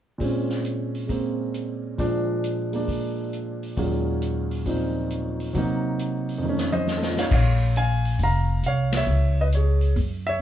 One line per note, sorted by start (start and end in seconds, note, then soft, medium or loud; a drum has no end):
0.18 1.96 A#2 soft
0.18 1.06 G#3 soft
0.18 1.09 C4 soft
0.18 kick soft
0.18 open hi-hat soft
0.24 2.00 C#4 soft
0.49 snare soft
0.65 closed hi-hat soft
0.95 open hi-hat soft
1.07 1.98 G#3 soft
1.07 1.99 A#3 soft
1.07 1.99 C4 soft
1.07 kick soft
1.07 open hi-hat soft
1.54 closed hi-hat soft
1.98 3.76 A#2 soft
1.98 3.77 F3 soft
1.98 2.70 G#3 soft
1.98 2.74 D4 medium
1.98 kick soft
1.98 open hi-hat soft
2.44 closed hi-hat soft
2.72 3.76 G#3 soft
2.72 3.77 A#3 soft
2.72 3.78 D4 soft
2.72 open hi-hat soft
2.88 kick soft
2.88 open hi-hat soft
3.33 closed hi-hat soft
3.63 open hi-hat soft
3.77 5.54 D#2 soft
3.77 4.64 A#2 soft
3.77 5.53 F#3 soft
3.77 5.55 G#3 soft
3.77 5.55 C#4 soft
3.77 5.55 F4 soft
3.77 kick soft
3.77 open hi-hat soft
4.22 closed hi-hat soft
4.51 open hi-hat soft
4.66 5.54 A#2 soft
4.66 5.55 F3 soft
4.66 5.55 C4 soft
4.66 5.56 D#4 soft
4.66 kick soft
4.66 open hi-hat soft
5.10 closed hi-hat soft
5.40 open hi-hat soft
5.53 6.42 C3 soft
5.53 6.43 F#3 soft
5.53 6.44 A#3 soft
5.53 kick soft
5.53 open hi-hat soft
5.58 6.45 D#4 medium
5.99 closed hi-hat soft
6.29 open hi-hat soft
6.38 7.29 F2 soft
6.42 7.31 D#3 soft
6.42 7.33 A3 soft
6.49 7.34 C#4 medium
6.58 snare soft
6.72 6.86 C5 medium
6.72 7.18 D#5 medium
6.72 high tom medium
6.87 7.08 C5 soft
6.87 snare soft
6.97 7.17 A4 soft
7.02 snare medium
7.08 7.22 F4 soft
7.17 7.35 D#4 soft
7.17 7.32 C#5 medium
7.17 7.32 F5 medium
7.17 snare medium
7.31 8.16 A#1 medium
7.31 7.74 C#5 medium
7.31 7.74 F5 medium
7.31 kick medium
7.31 crash medium
7.76 8.18 F5 medium
7.76 8.18 G#5 medium
7.76 closed hi-hat soft
8.05 open hi-hat soft
8.19 8.60 F1 medium
8.19 kick soft
8.19 open hi-hat soft
8.23 8.63 F5 medium
8.23 8.63 A#5 medium
8.63 9.04 C2 medium
8.63 8.95 F5 medium
8.63 closed hi-hat soft
8.68 8.93 C#5 medium
8.92 snare medium
8.92 ride medium
8.97 9.36 C#5 medium
8.97 9.40 E5 medium
9.07 9.92 C#2 medium
9.41 9.46 B4 medium
9.41 9.46 D#5 medium
9.52 9.95 C#5 medium
9.52 closed hi-hat soft
9.57 9.96 G#4 medium
9.81 open hi-hat soft
9.96 10.37 F#2 medium
9.96 kick soft
9.96 open hi-hat soft
10.27 10.42 C#5 medium
10.27 10.42 E5 medium